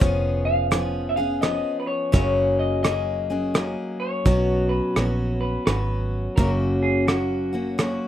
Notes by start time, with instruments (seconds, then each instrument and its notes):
Already playing: clean electric guitar C#5
0.00 fingered electric bass F1, steel-string acoustic guitar F3 B3 C#4 G#4, kick, closed hi-hat
0.45 clean electric guitar F5
0.71 steel-string acoustic guitar F3 B3 C#4 G#4, cross-stick, closed hi-hat
1.09 clean electric guitar E5
1.16 steel-string acoustic guitar B3 C#4 G#4, clean electric guitar F5
1.41 steel-string acoustic guitar F3 B3 C#4 G#4, clean electric guitar D#5, cross-stick, closed hi-hat
1.80 clean electric guitar B4
1.87 clean electric guitar C#5
2.12 fingered electric bass F#1, steel-string acoustic guitar F#2 C#3 F#3 A#3 C#4 G#4, clean electric guitar C#5, kick, closed hi-hat
2.59 clean electric guitar D#5
2.83 steel-string acoustic guitar F#3 A#3 C#4 G#4, clean electric guitar D#5, cross-stick, closed hi-hat
3.30 steel-string acoustic guitar F#3 A#3 C#4 G#4
3.54 steel-string acoustic guitar F#3 A#3 C#4 G#4, cross-stick, closed hi-hat
4.00 clean electric guitar C#5
4.25 fingered electric bass B1, steel-string acoustic guitar B2 F#3 B3 C#4 F#4, kick, closed hi-hat
4.69 clean electric guitar B4
4.96 fingered electric bass A#1, steel-string acoustic guitar F#3 B3 C#4 F#4, cross-stick, closed hi-hat
5.41 clean electric guitar B4
5.66 fingered electric bass G#1, steel-string acoustic guitar F#3 B3 C#4 F#4, clean electric guitar B4, cross-stick, closed hi-hat
6.36 fingered electric bass F#1, steel-string acoustic guitar F#2 C#3 F#3 A#3 C#4 F#4, clean electric guitar A#4, kick, closed hi-hat
6.83 clean electric guitar G#4
7.07 steel-string acoustic guitar F#3 A#3 C#4 F#4, clean electric guitar F#4, cross-stick, closed hi-hat
7.53 steel-string acoustic guitar F#3 A#3 C#4 F#4
7.78 steel-string acoustic guitar F#3 A#3 C#4 F#4, cross-stick, closed hi-hat